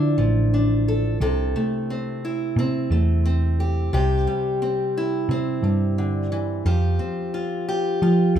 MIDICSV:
0, 0, Header, 1, 3, 480
1, 0, Start_track
1, 0, Tempo, 681818
1, 850, Time_signature, 4, 2, 24, 8
1, 5909, End_track
2, 0, Start_track
2, 0, Title_t, "Steel-string acoustic guitar"
2, 0, Program_c, 0, 25
2, 0, Note_on_c, 0, 50, 86
2, 0, Note_on_c, 0, 53, 75
2, 0, Note_on_c, 0, 62, 65
2, 0, Note_on_c, 0, 64, 65
2, 0, Note_on_c, 0, 69, 77
2, 117, Note_off_c, 0, 53, 0
2, 125, Note_on_c, 0, 53, 68
2, 370, Note_off_c, 0, 62, 0
2, 378, Note_on_c, 0, 62, 59
2, 611, Note_off_c, 0, 69, 0
2, 622, Note_on_c, 0, 69, 65
2, 819, Note_off_c, 0, 50, 0
2, 825, Note_off_c, 0, 62, 0
2, 827, Note_off_c, 0, 69, 0
2, 847, Note_off_c, 0, 53, 0
2, 855, Note_on_c, 0, 48, 88
2, 859, Note_on_c, 0, 69, 75
2, 1097, Note_on_c, 0, 57, 63
2, 1340, Note_on_c, 0, 60, 62
2, 1578, Note_off_c, 0, 64, 0
2, 1581, Note_on_c, 0, 64, 63
2, 1818, Note_off_c, 0, 60, 0
2, 1821, Note_on_c, 0, 60, 76
2, 2045, Note_off_c, 0, 57, 0
2, 2053, Note_on_c, 0, 57, 63
2, 2289, Note_off_c, 0, 60, 0
2, 2291, Note_on_c, 0, 60, 67
2, 2532, Note_off_c, 0, 69, 0
2, 2535, Note_on_c, 0, 67, 64
2, 2741, Note_off_c, 0, 57, 0
2, 2745, Note_off_c, 0, 64, 0
2, 2758, Note_off_c, 0, 48, 0
2, 2766, Note_off_c, 0, 67, 0
2, 2767, Note_on_c, 0, 48, 88
2, 2774, Note_on_c, 0, 67, 84
2, 3007, Note_on_c, 0, 55, 68
2, 3249, Note_off_c, 0, 60, 0
2, 3252, Note_on_c, 0, 60, 63
2, 3502, Note_on_c, 0, 64, 72
2, 3735, Note_off_c, 0, 60, 0
2, 3738, Note_on_c, 0, 60, 66
2, 3960, Note_off_c, 0, 55, 0
2, 3969, Note_on_c, 0, 55, 61
2, 4207, Note_off_c, 0, 48, 0
2, 4212, Note_on_c, 0, 50, 67
2, 4445, Note_off_c, 0, 50, 0
2, 4448, Note_on_c, 0, 52, 69
2, 4660, Note_off_c, 0, 55, 0
2, 4665, Note_off_c, 0, 60, 0
2, 4667, Note_off_c, 0, 64, 0
2, 4682, Note_off_c, 0, 67, 0
2, 4686, Note_on_c, 0, 53, 86
2, 4688, Note_off_c, 0, 52, 0
2, 4691, Note_on_c, 0, 67, 69
2, 4923, Note_on_c, 0, 60, 70
2, 5167, Note_on_c, 0, 65, 62
2, 5402, Note_off_c, 0, 67, 0
2, 5410, Note_on_c, 0, 67, 81
2, 5642, Note_off_c, 0, 65, 0
2, 5650, Note_on_c, 0, 65, 68
2, 5879, Note_off_c, 0, 60, 0
2, 5887, Note_on_c, 0, 60, 62
2, 5909, Note_off_c, 0, 53, 0
2, 5909, Note_off_c, 0, 60, 0
2, 5909, Note_off_c, 0, 65, 0
2, 5909, Note_off_c, 0, 67, 0
2, 5909, End_track
3, 0, Start_track
3, 0, Title_t, "Picked electric bass"
3, 0, Program_c, 1, 34
3, 0, Note_on_c, 1, 50, 104
3, 115, Note_off_c, 1, 50, 0
3, 127, Note_on_c, 1, 33, 102
3, 820, Note_off_c, 1, 33, 0
3, 848, Note_on_c, 1, 36, 104
3, 1076, Note_off_c, 1, 36, 0
3, 1804, Note_on_c, 1, 48, 110
3, 2034, Note_off_c, 1, 48, 0
3, 2045, Note_on_c, 1, 40, 106
3, 2738, Note_off_c, 1, 40, 0
3, 2768, Note_on_c, 1, 36, 102
3, 2996, Note_off_c, 1, 36, 0
3, 3723, Note_on_c, 1, 48, 104
3, 3953, Note_off_c, 1, 48, 0
3, 3961, Note_on_c, 1, 43, 89
3, 4657, Note_off_c, 1, 43, 0
3, 4686, Note_on_c, 1, 41, 103
3, 4915, Note_off_c, 1, 41, 0
3, 5646, Note_on_c, 1, 53, 94
3, 5877, Note_off_c, 1, 53, 0
3, 5882, Note_on_c, 1, 36, 102
3, 5909, Note_off_c, 1, 36, 0
3, 5909, End_track
0, 0, End_of_file